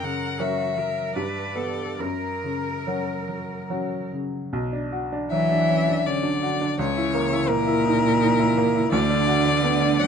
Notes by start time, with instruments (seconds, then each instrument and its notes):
Already playing: grand piano F#2, cello A#4
0.03 grand piano C#3, violin F#5
0.40 grand piano F#3 C#4 A#4, cello F#4, violin E5
0.77 grand piano F#3, cello A#4
1.15 grand piano G2, cello B4, violin D5
1.55 grand piano B3 B4, cello A4
1.99 grand piano F#2, cello A#4, violin A#4
2.44 grand piano C#3
2.87 grand piano F#3 C#4 F#4
3.28 grand piano F#3
3.70 grand piano F#3 C#4 F#4
4.13 grand piano C#3
4.53 grand piano B1
4.73 grand piano D4
4.92 grand piano F#4
5.12 grand piano D4
5.30 cello E3, grand piano F#3, violin E5
5.51 grand piano D4
5.70 grand piano C#4
5.88 grand piano D4
6.06 cello D3, grand piano C#4, violin D5
6.23 grand piano D4
6.42 grand piano F#4
6.61 grand piano D4
6.78 grand piano C#2, cello C#3, violin C#5
6.96 grand piano E4
7.14 grand piano A#3
7.32 grand piano E4
7.49 cello A#2, grand piano A#3, violin A#4
7.67 grand piano E4
7.85 grand piano D#4
8.03 grand piano E4
8.21 grand piano D#4
8.39 grand piano E4
8.57 grand piano A#3
8.76 grand piano E4
8.90 grand piano D2, cello D3, violin D5
9.10 grand piano D4
9.27 grand piano F#4
9.46 grand piano D4
9.63 grand piano B3
9.81 grand piano D4
9.99 cello F#3, grand piano C#4, violin F#5